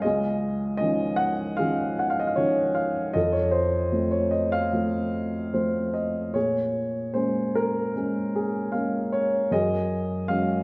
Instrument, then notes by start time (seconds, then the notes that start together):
upright piano
0.02 G#4 D#5
0.06 C#2
0.77 D#3 F3 C#4 D#5
1.16 F#5
1.57 D#3 F3 C#4 G#4 F5
1.99 F#5
2.10 F5
2.20 D#5
2.27 F5
2.36 D#3 F3 C#4 C#5
2.75 F5
3.13 F2 A4 D#5
3.32 C#5
3.51 C5
3.92 F3 A3 C4
4.11 C#5
4.31 D#5
4.52 F5
4.73 F3 A3 C4
5.53 F3 A3 C4 C5
5.94 D#5
6.34 A#2 G#4 C#5
7.14 G#3 A#3 C#4 C5
7.55 A#4
7.95 G#3 A#3 C#4
8.36 G#4
8.72 G#3 A#3 C#4 F5
9.12 C#5
9.51 F#2 G#4 D#5
10.28 F#3 G#3 C#4 F5